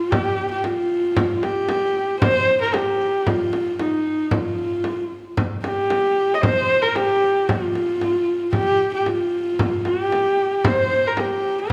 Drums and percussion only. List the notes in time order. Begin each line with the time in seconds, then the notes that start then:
0.12 frame drum
0.38 frame drum
0.51 frame drum
0.64 frame drum
1.16 frame drum
1.43 frame drum
1.56 frame drum
1.69 frame drum
2.22 frame drum
2.48 frame drum
2.61 frame drum
2.74 frame drum
3.27 frame drum
3.53 frame drum
3.79 frame drum
4.31 frame drum
4.58 frame drum
4.71 frame drum
4.84 frame drum
5.37 frame drum
5.64 frame drum
5.77 frame drum
5.90 frame drum
6.43 frame drum
6.70 frame drum
6.83 frame drum
6.96 frame drum
7.49 frame drum
7.75 frame drum
8.01 frame drum
8.53 frame drum
8.80 frame drum
8.94 frame drum
9.06 frame drum
9.59 frame drum
9.85 frame drum
10.12 frame drum
10.64 frame drum
10.92 frame drum
11.04 frame drum
11.17 frame drum